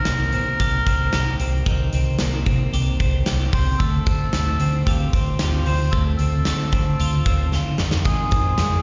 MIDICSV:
0, 0, Header, 1, 6, 480
1, 0, Start_track
1, 0, Key_signature, -3, "minor"
1, 0, Tempo, 532860
1, 1497, Time_signature, 4, 2, 24, 8
1, 7946, End_track
2, 0, Start_track
2, 0, Title_t, "Melodica"
2, 0, Program_c, 0, 22
2, 0, Note_on_c, 0, 70, 105
2, 1221, Note_off_c, 0, 70, 0
2, 3179, Note_on_c, 0, 72, 90
2, 3412, Note_on_c, 0, 69, 96
2, 3426, Note_off_c, 0, 72, 0
2, 4373, Note_on_c, 0, 67, 80
2, 4404, Note_off_c, 0, 69, 0
2, 4822, Note_off_c, 0, 67, 0
2, 4841, Note_on_c, 0, 67, 80
2, 5081, Note_on_c, 0, 72, 91
2, 5097, Note_off_c, 0, 67, 0
2, 5326, Note_on_c, 0, 69, 83
2, 5337, Note_off_c, 0, 72, 0
2, 5437, Note_off_c, 0, 69, 0
2, 5554, Note_on_c, 0, 69, 83
2, 6729, Note_off_c, 0, 69, 0
2, 7246, Note_on_c, 0, 68, 107
2, 7946, Note_off_c, 0, 68, 0
2, 7946, End_track
3, 0, Start_track
3, 0, Title_t, "Clean electric guitar"
3, 0, Program_c, 1, 27
3, 0, Note_on_c, 1, 51, 66
3, 0, Note_on_c, 1, 60, 52
3, 68, Note_on_c, 1, 58, 50
3, 301, Note_off_c, 1, 60, 0
3, 304, Note_on_c, 1, 60, 51
3, 545, Note_on_c, 1, 67, 63
3, 780, Note_off_c, 1, 60, 0
3, 783, Note_on_c, 1, 60, 53
3, 1018, Note_off_c, 1, 67, 0
3, 1028, Note_on_c, 1, 67, 50
3, 1261, Note_off_c, 1, 60, 0
3, 1265, Note_on_c, 1, 60, 54
3, 1493, Note_off_c, 1, 51, 0
3, 1504, Note_on_c, 1, 51, 74
3, 1747, Note_off_c, 1, 60, 0
3, 1751, Note_on_c, 1, 60, 58
3, 1976, Note_off_c, 1, 58, 0
3, 1987, Note_on_c, 1, 58, 57
3, 2221, Note_off_c, 1, 60, 0
3, 2224, Note_on_c, 1, 60, 53
3, 2450, Note_off_c, 1, 67, 0
3, 2461, Note_on_c, 1, 67, 60
3, 2698, Note_off_c, 1, 60, 0
3, 2702, Note_on_c, 1, 60, 49
3, 2932, Note_off_c, 1, 67, 0
3, 2942, Note_on_c, 1, 67, 54
3, 3180, Note_off_c, 1, 60, 0
3, 3184, Note_on_c, 1, 60, 54
3, 3419, Note_off_c, 1, 58, 0
3, 3422, Note_off_c, 1, 51, 0
3, 3422, Note_on_c, 1, 57, 75
3, 3469, Note_off_c, 1, 67, 0
3, 3661, Note_off_c, 1, 60, 0
3, 3665, Note_on_c, 1, 60, 50
3, 3901, Note_off_c, 1, 57, 0
3, 3913, Note_on_c, 1, 57, 52
3, 4145, Note_off_c, 1, 60, 0
3, 4149, Note_on_c, 1, 60, 54
3, 4394, Note_on_c, 1, 65, 66
3, 4628, Note_off_c, 1, 60, 0
3, 4632, Note_on_c, 1, 60, 49
3, 4866, Note_off_c, 1, 65, 0
3, 4870, Note_on_c, 1, 65, 58
3, 5103, Note_off_c, 1, 60, 0
3, 5107, Note_on_c, 1, 60, 60
3, 5336, Note_off_c, 1, 57, 0
3, 5347, Note_on_c, 1, 57, 75
3, 5586, Note_off_c, 1, 60, 0
3, 5590, Note_on_c, 1, 60, 49
3, 5811, Note_off_c, 1, 57, 0
3, 5822, Note_on_c, 1, 57, 56
3, 6062, Note_off_c, 1, 60, 0
3, 6065, Note_on_c, 1, 60, 57
3, 6306, Note_off_c, 1, 65, 0
3, 6309, Note_on_c, 1, 65, 60
3, 6548, Note_off_c, 1, 60, 0
3, 6551, Note_on_c, 1, 60, 51
3, 6782, Note_off_c, 1, 65, 0
3, 6785, Note_on_c, 1, 65, 59
3, 7020, Note_on_c, 1, 51, 67
3, 7067, Note_off_c, 1, 57, 0
3, 7253, Note_off_c, 1, 51, 0
3, 7256, Note_on_c, 1, 51, 74
3, 7283, Note_off_c, 1, 65, 0
3, 7491, Note_off_c, 1, 60, 0
3, 7495, Note_on_c, 1, 60, 50
3, 7737, Note_on_c, 1, 56, 56
3, 7946, Note_off_c, 1, 51, 0
3, 7946, Note_off_c, 1, 56, 0
3, 7946, Note_off_c, 1, 60, 0
3, 7946, End_track
4, 0, Start_track
4, 0, Title_t, "Steel-string acoustic guitar"
4, 0, Program_c, 2, 25
4, 7250, Note_on_c, 2, 41, 56
4, 7256, Note_on_c, 2, 48, 61
4, 7257, Note_on_c, 2, 51, 61
4, 7259, Note_on_c, 2, 56, 59
4, 7262, Note_on_c, 2, 60, 65
4, 7263, Note_on_c, 2, 65, 73
4, 7480, Note_off_c, 2, 65, 0
4, 7486, Note_off_c, 2, 60, 0
4, 7491, Note_on_c, 2, 65, 46
4, 7492, Note_off_c, 2, 56, 0
4, 7493, Note_off_c, 2, 41, 0
4, 7496, Note_off_c, 2, 48, 0
4, 7496, Note_off_c, 2, 51, 0
4, 7497, Note_on_c, 2, 60, 44
4, 7503, Note_on_c, 2, 56, 40
4, 7509, Note_on_c, 2, 51, 40
4, 7718, Note_off_c, 2, 51, 0
4, 7723, Note_off_c, 2, 56, 0
4, 7723, Note_on_c, 2, 41, 75
4, 7727, Note_off_c, 2, 60, 0
4, 7727, Note_off_c, 2, 65, 0
4, 7728, Note_on_c, 2, 48, 73
4, 7728, Note_on_c, 2, 51, 75
4, 7734, Note_on_c, 2, 56, 93
4, 7737, Note_on_c, 2, 60, 85
4, 7738, Note_on_c, 2, 65, 83
4, 7946, Note_off_c, 2, 41, 0
4, 7946, Note_off_c, 2, 48, 0
4, 7946, Note_off_c, 2, 51, 0
4, 7946, Note_off_c, 2, 56, 0
4, 7946, Note_off_c, 2, 60, 0
4, 7946, Note_off_c, 2, 65, 0
4, 7946, End_track
5, 0, Start_track
5, 0, Title_t, "Fingered electric bass"
5, 0, Program_c, 3, 33
5, 64, Note_on_c, 3, 36, 72
5, 307, Note_on_c, 3, 48, 77
5, 320, Note_off_c, 3, 36, 0
5, 499, Note_off_c, 3, 48, 0
5, 537, Note_on_c, 3, 36, 96
5, 734, Note_off_c, 3, 36, 0
5, 779, Note_on_c, 3, 36, 76
5, 975, Note_off_c, 3, 36, 0
5, 1023, Note_on_c, 3, 36, 84
5, 1218, Note_off_c, 3, 36, 0
5, 1258, Note_on_c, 3, 36, 78
5, 1454, Note_off_c, 3, 36, 0
5, 1498, Note_on_c, 3, 36, 78
5, 1694, Note_off_c, 3, 36, 0
5, 1741, Note_on_c, 3, 36, 79
5, 1936, Note_off_c, 3, 36, 0
5, 1983, Note_on_c, 3, 36, 77
5, 2178, Note_off_c, 3, 36, 0
5, 2222, Note_on_c, 3, 48, 83
5, 2417, Note_off_c, 3, 48, 0
5, 2467, Note_on_c, 3, 36, 86
5, 2660, Note_off_c, 3, 36, 0
5, 2703, Note_on_c, 3, 36, 80
5, 2898, Note_off_c, 3, 36, 0
5, 2943, Note_on_c, 3, 36, 87
5, 3138, Note_off_c, 3, 36, 0
5, 3181, Note_on_c, 3, 36, 78
5, 3377, Note_off_c, 3, 36, 0
5, 3424, Note_on_c, 3, 38, 85
5, 3619, Note_off_c, 3, 38, 0
5, 3665, Note_on_c, 3, 38, 81
5, 3859, Note_off_c, 3, 38, 0
5, 3899, Note_on_c, 3, 38, 80
5, 4095, Note_off_c, 3, 38, 0
5, 4138, Note_on_c, 3, 50, 73
5, 4335, Note_off_c, 3, 50, 0
5, 4386, Note_on_c, 3, 38, 88
5, 4580, Note_off_c, 3, 38, 0
5, 4627, Note_on_c, 3, 38, 90
5, 4820, Note_off_c, 3, 38, 0
5, 4862, Note_on_c, 3, 38, 82
5, 5057, Note_off_c, 3, 38, 0
5, 5107, Note_on_c, 3, 38, 73
5, 5300, Note_off_c, 3, 38, 0
5, 5341, Note_on_c, 3, 38, 95
5, 5537, Note_off_c, 3, 38, 0
5, 5585, Note_on_c, 3, 38, 67
5, 5779, Note_off_c, 3, 38, 0
5, 5826, Note_on_c, 3, 38, 82
5, 6061, Note_off_c, 3, 38, 0
5, 6061, Note_on_c, 3, 50, 76
5, 6256, Note_off_c, 3, 50, 0
5, 6304, Note_on_c, 3, 38, 96
5, 6498, Note_off_c, 3, 38, 0
5, 6538, Note_on_c, 3, 38, 85
5, 6734, Note_off_c, 3, 38, 0
5, 6778, Note_on_c, 3, 38, 79
5, 6974, Note_off_c, 3, 38, 0
5, 7015, Note_on_c, 3, 41, 79
5, 7409, Note_off_c, 3, 41, 0
5, 7496, Note_on_c, 3, 41, 85
5, 7692, Note_off_c, 3, 41, 0
5, 7731, Note_on_c, 3, 41, 80
5, 7929, Note_off_c, 3, 41, 0
5, 7946, End_track
6, 0, Start_track
6, 0, Title_t, "Drums"
6, 48, Note_on_c, 9, 38, 98
6, 53, Note_on_c, 9, 42, 77
6, 138, Note_off_c, 9, 38, 0
6, 143, Note_off_c, 9, 42, 0
6, 293, Note_on_c, 9, 42, 54
6, 383, Note_off_c, 9, 42, 0
6, 540, Note_on_c, 9, 36, 74
6, 542, Note_on_c, 9, 42, 76
6, 630, Note_off_c, 9, 36, 0
6, 633, Note_off_c, 9, 42, 0
6, 779, Note_on_c, 9, 42, 79
6, 780, Note_on_c, 9, 36, 80
6, 869, Note_off_c, 9, 42, 0
6, 870, Note_off_c, 9, 36, 0
6, 1013, Note_on_c, 9, 42, 76
6, 1016, Note_on_c, 9, 38, 90
6, 1103, Note_off_c, 9, 42, 0
6, 1106, Note_off_c, 9, 38, 0
6, 1257, Note_on_c, 9, 42, 63
6, 1347, Note_off_c, 9, 42, 0
6, 1496, Note_on_c, 9, 42, 69
6, 1498, Note_on_c, 9, 36, 103
6, 1586, Note_off_c, 9, 42, 0
6, 1588, Note_off_c, 9, 36, 0
6, 1736, Note_on_c, 9, 42, 66
6, 1826, Note_off_c, 9, 42, 0
6, 1969, Note_on_c, 9, 38, 94
6, 1975, Note_on_c, 9, 42, 80
6, 2059, Note_off_c, 9, 38, 0
6, 2065, Note_off_c, 9, 42, 0
6, 2216, Note_on_c, 9, 42, 57
6, 2220, Note_on_c, 9, 36, 76
6, 2306, Note_off_c, 9, 42, 0
6, 2310, Note_off_c, 9, 36, 0
6, 2465, Note_on_c, 9, 42, 86
6, 2555, Note_off_c, 9, 42, 0
6, 2703, Note_on_c, 9, 36, 84
6, 2703, Note_on_c, 9, 42, 76
6, 2793, Note_off_c, 9, 36, 0
6, 2793, Note_off_c, 9, 42, 0
6, 2936, Note_on_c, 9, 42, 75
6, 2939, Note_on_c, 9, 38, 95
6, 3026, Note_off_c, 9, 42, 0
6, 3029, Note_off_c, 9, 38, 0
6, 3181, Note_on_c, 9, 36, 91
6, 3182, Note_on_c, 9, 46, 65
6, 3271, Note_off_c, 9, 36, 0
6, 3272, Note_off_c, 9, 46, 0
6, 3424, Note_on_c, 9, 36, 82
6, 3424, Note_on_c, 9, 42, 60
6, 3514, Note_off_c, 9, 36, 0
6, 3514, Note_off_c, 9, 42, 0
6, 3660, Note_on_c, 9, 42, 66
6, 3664, Note_on_c, 9, 36, 94
6, 3750, Note_off_c, 9, 42, 0
6, 3754, Note_off_c, 9, 36, 0
6, 3900, Note_on_c, 9, 38, 94
6, 3905, Note_on_c, 9, 42, 84
6, 3990, Note_off_c, 9, 38, 0
6, 3995, Note_off_c, 9, 42, 0
6, 4141, Note_on_c, 9, 42, 59
6, 4231, Note_off_c, 9, 42, 0
6, 4385, Note_on_c, 9, 36, 74
6, 4387, Note_on_c, 9, 42, 87
6, 4475, Note_off_c, 9, 36, 0
6, 4477, Note_off_c, 9, 42, 0
6, 4624, Note_on_c, 9, 36, 75
6, 4627, Note_on_c, 9, 42, 71
6, 4714, Note_off_c, 9, 36, 0
6, 4717, Note_off_c, 9, 42, 0
6, 4855, Note_on_c, 9, 42, 75
6, 4858, Note_on_c, 9, 38, 92
6, 4945, Note_off_c, 9, 42, 0
6, 4948, Note_off_c, 9, 38, 0
6, 5098, Note_on_c, 9, 46, 67
6, 5188, Note_off_c, 9, 46, 0
6, 5338, Note_on_c, 9, 42, 60
6, 5340, Note_on_c, 9, 36, 93
6, 5428, Note_off_c, 9, 42, 0
6, 5431, Note_off_c, 9, 36, 0
6, 5574, Note_on_c, 9, 42, 63
6, 5664, Note_off_c, 9, 42, 0
6, 5813, Note_on_c, 9, 38, 88
6, 5818, Note_on_c, 9, 42, 83
6, 5903, Note_off_c, 9, 38, 0
6, 5908, Note_off_c, 9, 42, 0
6, 6055, Note_on_c, 9, 42, 57
6, 6060, Note_on_c, 9, 36, 78
6, 6146, Note_off_c, 9, 42, 0
6, 6150, Note_off_c, 9, 36, 0
6, 6302, Note_on_c, 9, 42, 79
6, 6392, Note_off_c, 9, 42, 0
6, 6539, Note_on_c, 9, 36, 85
6, 6539, Note_on_c, 9, 42, 72
6, 6629, Note_off_c, 9, 36, 0
6, 6629, Note_off_c, 9, 42, 0
6, 6776, Note_on_c, 9, 38, 42
6, 6866, Note_off_c, 9, 38, 0
6, 7010, Note_on_c, 9, 38, 73
6, 7100, Note_off_c, 9, 38, 0
6, 7128, Note_on_c, 9, 38, 81
6, 7218, Note_off_c, 9, 38, 0
6, 7249, Note_on_c, 9, 42, 77
6, 7255, Note_on_c, 9, 36, 95
6, 7339, Note_off_c, 9, 42, 0
6, 7345, Note_off_c, 9, 36, 0
6, 7487, Note_on_c, 9, 42, 59
6, 7495, Note_on_c, 9, 36, 99
6, 7578, Note_off_c, 9, 42, 0
6, 7585, Note_off_c, 9, 36, 0
6, 7727, Note_on_c, 9, 38, 88
6, 7732, Note_on_c, 9, 42, 88
6, 7817, Note_off_c, 9, 38, 0
6, 7822, Note_off_c, 9, 42, 0
6, 7946, End_track
0, 0, End_of_file